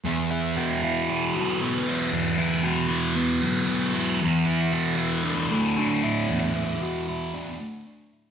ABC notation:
X:1
M:4/4
L:1/8
Q:1/4=115
K:D
V:1 name="Distorted electric guitar"
E,, E F E B, F, B, E | E,, E F E B, F, B, E | E,, E F E D A, D E | E,, E F E D A, D E |]